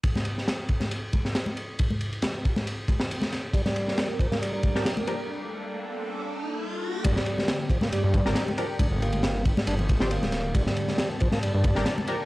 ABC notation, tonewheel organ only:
X:1
M:4/4
L:1/16
Q:"Swing 16ths" 1/4=137
K:Gm
V:1 name="Tonewheel organ" clef=bass
z16 | z16 | G, G,4 z F, B, G, G,3 G, z F, z | z16 |
G, G,4 z F, B, G, G,3 G, z F, z | D z B,4 z G, D z2 F, B,4 | G, G,4 z F, B, G, G,3 G, z F, z |]